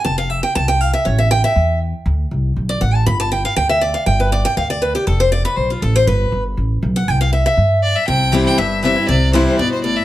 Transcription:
<<
  \new Staff \with { instrumentName = "Fiddle" } { \time 4/4 \key c \major \tempo 4 = 239 r1 | r1 | r1 | r1 |
r1 | r1 | r1 | r2. d''8 e''8 |
g''4. g''8 e''4 e''4 | d''4 c''8 c''8 d''8 c''8 d''8 e''8 | }
  \new Staff \with { instrumentName = "Steel-string acoustic guitar" } { \time 4/4 \key c \major << { a''8 f''8 e''8 g''8 a''8 g''8 f''8 e''8 | des''8 e''8 g''8 e''4. r4 | r2 r8 d''8 fis''8 a''8 | b''8 a''8 g''8 f''8 g''8 e''8 d''8 f''8 |
g''8 b'8 d''8 g''8 f''8 d''8 b'8 g'8 | a'8 c''8 d''8 b'8 c''8 f'8 a'8 c''8 | b'4. r2 fis''8 | g''8 f''8 e''8 e''4. r4 |
r4 <e g c' e'>4 r4 <e g c' e'>8 <c' e'>8 | r4 <e g c' e'>4 r2 | } \\ { r1 | r1 | r1 | r1 |
r1 | r1 | r1 | r1 |
c2 g,2 | c2 b,4 a,4 | } >> }
  \new Staff \with { instrumentName = "Upright bass" } { \clef bass \time 4/4 \key c \major f,,2 c,2 | a,,2 e,2 | d,4 c,4 b,,4 a,,4 | g,,2 d,2 |
g,,2 d,2 | f,,2 b,,4 a,,4 | g,,4 g,,4 a,,4 b,,4 | c,2 g,2 |
c,2 g,,2 | c,2 g,,2 | }
>>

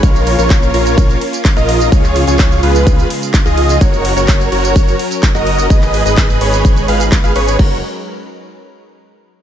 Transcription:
<<
  \new Staff \with { instrumentName = "Analog synth lead" } { \time 4/4 \key fis \major \tempo 4 = 127 cis''8. cis''8. cis''4 r8. dis''8. | cis''8. cis''8. b'4 r8. dis''8. | cis''8. cis''8. cis''4 r8. dis''8. | dis''8. dis''8. cis''4 eis''16 r8 eis''16 cis''8 |
cis''8 r2. r8 | }
  \new Staff \with { instrumentName = "Supersaw synth" } { \time 4/4 \key fis \major <eis' ais' cis''>8. <eis' ais' cis''>8. <eis' ais' cis''>4 r8. <eis' ais' dis''>8. | r8. <eis' gis' cis''>8. <eis' gis' b'>4 r8. <eis' gis' dis''>8. | <fis' ais' cis''>8. <fis' ais' cis''>8. <fis' ais' cis''>4 r8. <fis' ais' dis''>8. | b'8. <gis' b' dis''>8. <gis' b' cis''>4 <gis' b' eis''>16 r8 <gis' b' eis''>16 <gis' b' cis''>8 |
<fis' ais' cis''>8 r2. r8 | }
  \new Staff \with { instrumentName = "Analog synth pad" } { \time 4/4 \key fis \major << { eis'1~ | eis'1 | ais'1 | b'1 |
<fis cis' ais'>8 r2. r8 | } \\ { <ais cis'>1 | <cis gis>1 | <fis cis'>1 | <gis dis'>1 |
r1 | } >> }
  \new Staff \with { instrumentName = "Detuned saw bass" } { \clef bass \time 4/4 \key fis \major ais,,8. ais,,8. ais,,4 r8. ais,,8. | cis,8. cis,8. cis,4 r8. cis,8. | fis,,8. fis,,8. fis,,4 r8. fis,,8. | gis,,8. gis,,8. gis,,4 gis,,8. gis,,16 gis,,8 |
fis,,8 r2. r8 | }
  \new DrumStaff \with { instrumentName = "Drums" } \drummode { \time 4/4 <hh bd cymr tamb>16 <hh tamb>16 <hho cymr>16 <hh tamb>16 <hc hh bd cymr tamb>16 <hh tamb>16 <hho cymr>16 <hh tamb>16 <hh bd cymr tamb>16 <hh tamb>16 <hho cymr>16 <hh tamb>16 <hc hh bd cymr tamb>16 <hh tamb>16 <hho cymr>16 <hh tamb>16 | <hh bd cymr tamb>16 <hc hh tamb>16 <hho cymr>16 <hh tamb>16 <hc hh bd cymr tamb>16 <hh tamb>16 <hho cymr>16 <hh tamb>16 <hh bd cymr tamb>16 <hh tamb>16 <hho cymr>16 <hh tamb>16 <hc hh bd cymr tamb>16 <hh tamb>16 <hho cymr>16 <hh tamb>16 | <hh bd cymr tamb>16 <hh tamb>16 <hho cymr>16 <hh tamb>16 <hc hh bd cymr tamb>16 <hh tamb>16 <hho cymr>16 <hh tamb>16 <hh bd cymr tamb>16 <hh tamb>16 <hho cymr>16 <hh tamb>16 <hc hh bd cymr tamb>16 <hh tamb>16 <hho cymr>16 <hh tamb>16 | <hh bd cymr tamb>16 <hc hh tamb>16 <hho cymr>16 <hh tamb>16 <hc hh bd cymr tamb>16 <hh tamb>16 <hho cymr>16 <hh tamb>16 <hh bd cymr tamb>16 <hh tamb>16 <hho cymr>16 <hh tamb>16 <hc hh bd cymr tamb>16 <hh tamb>16 <hho cymr>16 <hh tamb>16 |
<cymc bd>4 r4 r4 r4 | }
>>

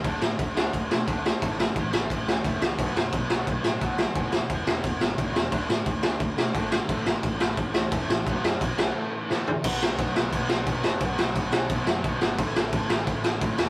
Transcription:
<<
  \new Staff \with { instrumentName = "Distorted electric guitar" } { \clef bass \time 4/4 \key a \lydian \tempo 4 = 175 <d a d'>8 <d a>8 <d a>8 <d a d'>8 <d a>8 <d a>8 <d a d'>8 <d a>8 | <a, e a>8 <a, e>8 <a, e>8 <a, e a>8 <a, e>8 <a, e>8 <a, e a>8 <a, e>8 | <b, fis b>8 <b, fis>8 <b, fis>8 <b, fis b>8 <b, fis>8 <b, fis>8 <b, fis b>8 <b, fis>8 | <e, b, e>8 <e, b,>8 <e, b,>8 <e, b, e>8 <e, b,>8 <e, b,>8 <e, b, e>8 <e, b,>8 |
<d a d'>8 <d a>8 <d a>8 <d a d'>8 <d a>8 <d a>8 <d a d'>8 <d a>8 | <a, e a>8 <a, e>8 <a, e>8 <a, e a>8 <a, e>8 <a, e>8 <a, e a>8 <a, e>8 | <b, fis b>8 <b, fis>8 <b, fis>8 <b, fis b>8 <a, e a>8 <a, e>8 <a, e a>8 <a, e>8 | <b, fis b>4 <b, fis b>8 <b, fis b>8 <b, fis b>4 <b, fis b>8 <b, fis b>8 |
<b, fis b>4 <b, fis b>8 <b, fis b>8 <b, fis b>4 <b, fis b>8 <b, fis b>8 | <a, e a>4 <a, e a>8 <a, e a>8 <a, e a>4 <a, e a>8 <a, e a>8 | }
  \new Staff \with { instrumentName = "Distorted electric guitar" } { \clef bass \time 4/4 \key a \lydian <d a d'>1 | <a, e a>1 | <b, fis b>1 | <e, b, e>1 |
<d a d'>1 | <a, e a>1 | <b, fis b>2 <a, e a>2 | <b, fis b>1 |
<b, fis b>1 | <a, e a>1 | }
  \new Staff \with { instrumentName = "Overdriven electric guitar" } { \clef bass \time 4/4 \key a \lydian <d a d'>8 <d a>8 <d a>8 <d a d'>8 <d a>8 <d a>8 <d a d'>8 <d a>8 | <a, e a>8 <a, e>8 <a, e>8 <a, e a>8 <a, e>8 <a, e>8 <a, e a>8 <a, e>8 | <b, fis b>8 <b, fis>8 <b, fis>8 <b, fis b>8 <b, fis>8 <b, fis>8 <b, fis b>8 <b, fis>8 | <e, b, e>8 <e, b,>8 <e, b,>8 <e, b, e>8 <e, b,>8 <e, b,>8 <e, b, e>8 <e, b,>8 |
<d a d'>8 <d a>8 <d a>8 <d a d'>8 <d a>8 <d a>8 <d a d'>8 <d a>8 | <a, e a>8 <a, e>8 <a, e>8 <a, e a>8 <a, e>8 <a, e>8 <a, e a>8 <a, e>8 | <b, fis b>8 <b, fis>8 <b, fis>8 <b, fis b>8 <a, e a>8 <a, e>8 <a, e a>8 <a, e>8 | <b, fis b>4 <b, fis b>8 <b, fis b>8 <b, fis b>4 <b, fis b>8 <b, fis b>8 |
<b, fis b>4 <b, fis b>8 <b, fis b>8 <b, fis b>4 <b, fis b>8 <b, fis b>8 | <a, e a>4 <a, e a>8 <a, e a>8 <a, e a>4 <a, e a>8 <a, e a>8 | }
  \new Staff \with { instrumentName = "Picked electric bass" } { \clef bass \time 4/4 \key a \lydian d,8 a,8 d,8 d,8 d,8 b,8 d,4 | a,,4 a,,8 a,,8 a,,8 cis,8 e,,8 cis,8 | b,,8 fis,8 b,,8 b,,8 b,,8 a,8 b,,4 | e,,4 e,,8 e,,8 e,,8 gis,,8 b,,8 e,,8 |
d,8 a,8 d,8 d,8 d,8 b,8 gis,,4 | a,,4 a,,8 a,,8 a,,8 cis,8 e,,8 a,,8 | b,,8 fis,8 b,,8 b,,8 r2 | b,,4 b,,8 b,,8 b,,4 b,,8 fis,,8 |
b,,8 b,,8 b,,8 b,,8 b,,8 fis,8 b,,8 gis,,8 | a,,4 a,,8 a,,8 a,,4 a,,8 e,,8 | }
  \new DrumStaff \with { instrumentName = "Drums" } \drummode { \time 4/4 <cymc bd>8 sn8 <cymc bd>8 sn8 <cymc bd>8 sn8 <cymc bd>8 sn8 | <cymc bd>8 sn8 <cymc bd>8 sn8 <cymc bd>8 sn8 <cymc bd>8 sn8 | <cymc bd>8 sn8 <cymc bd>8 sn8 <cymc bd>8 sn8 <cymc bd>8 sn8 | <cymc bd>8 sn8 <cymc bd>8 sn8 <cymc bd>8 sn8 <cymc bd>8 sn8 |
<cymc bd>8 sn8 <cymc bd>8 sn8 <cymc bd>8 sn8 <cymc bd>8 sn8 | <cymc bd>8 sn8 <cymc bd>8 sn8 <cymc bd>8 sn8 <cymc bd>8 sn8 | <cymc bd>8 sn8 <cymc bd>8 sn8 r4 sn8 tomfh8 | <cymc bd>8 sn8 <cymc bd>8 sn8 <cymc bd>8 sn8 <cymc bd>8 sn8 |
<cymc bd>8 sn8 <cymc bd>8 sn8 <cymc bd>8 sn8 <cymc bd>8 sn8 | <cymc bd>8 sn8 <cymc bd>8 sn8 <cymc bd>8 sn8 <cymc bd>8 sn8 | }
>>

